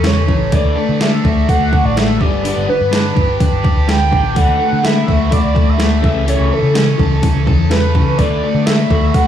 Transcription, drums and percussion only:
0.04 snare loud
0.04 open hi-hat soft
0.29 kick medium
0.52 kick loud
0.52 open hi-hat soft
1.01 snare medium
1.01 open hi-hat soft
1.25 kick medium
1.49 kick loud
1.49 open hi-hat soft
1.73 kick medium
1.97 snare medium
1.97 open hi-hat soft
2.21 kick medium
2.45 open hi-hat medium
2.93 snare medium
2.93 open hi-hat soft
3.17 kick medium
3.40 kick medium
3.40 open hi-hat soft
3.65 kick medium
3.89 snare medium
3.89 open hi-hat soft
4.13 kick medium
4.36 kick loud
4.36 open hi-hat soft
4.85 snare medium
4.85 open hi-hat soft
5.08 kick medium
5.32 kick loud
5.32 open hi-hat soft
5.56 kick medium
5.80 snare medium
5.80 open hi-hat soft
6.04 kick loud
6.28 open hi-hat soft
6.75 snare medium
6.75 open hi-hat soft
6.99 kick medium
7.23 kick loud
7.23 open hi-hat soft
7.47 kick medium
7.71 snare medium
7.71 open hi-hat soft
7.95 kick medium
8.19 kick loud
8.19 open hi-hat soft
8.67 snare medium
8.67 open hi-hat soft
8.91 kick medium
9.14 kick loud
9.14 open hi-hat soft

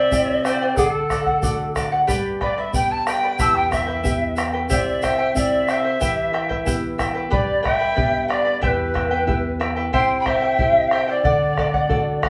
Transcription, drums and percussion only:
0.12 bombo low medium
0.12 shaker loud
0.45 bombo rim medium
0.45 shaker medium
0.77 bombo low medium
0.77 shaker loud
1.10 bombo rim soft
1.10 bombo low soft
1.10 shaker medium
1.26 bombo low soft
1.43 bombo low medium
1.43 shaker medium
1.76 bombo rim medium
1.76 bombo low soft
1.76 shaker medium
2.08 bombo low medium
2.08 shaker loud
2.41 bombo rim soft
2.41 bombo low medium
2.74 bombo low medium
2.74 shaker medium
3.07 bombo rim medium
3.07 shaker medium
3.39 bombo low medium
3.39 shaker loud
3.72 bombo rim medium
3.72 bombo low medium
3.72 shaker medium
4.05 bombo low medium
4.05 shaker medium
4.37 bombo rim medium
4.37 shaker medium
4.70 bombo low medium
4.70 shaker loud
5.02 bombo rim soft
5.02 bombo low soft
5.02 shaker medium
5.36 bombo low medium
5.36 shaker loud
5.68 bombo rim soft
5.68 shaker medium
6.01 bombo low medium
6.01 shaker loud
6.34 bombo rim soft
6.50 bombo low soft
6.67 bombo low medium
6.67 shaker medium
6.99 bombo rim medium
6.99 bombo low soft
6.99 shaker medium
7.32 bombo low medium
7.65 bombo rim medium
7.65 bombo low medium
7.98 bombo low medium
8.30 bombo rim medium
8.63 bombo low medium
8.95 bombo rim soft
8.95 bombo low medium
9.28 bombo low medium
9.61 bombo rim medium
9.94 bombo low medium
10.26 bombo rim soft
10.26 bombo low medium
10.59 bombo low medium
10.91 bombo rim medium
11.25 bombo low medium
11.58 bombo rim medium
11.58 bombo low medium
11.74 bombo low medium
11.90 bombo low medium
12.23 bombo rim medium
12.23 bombo low medium

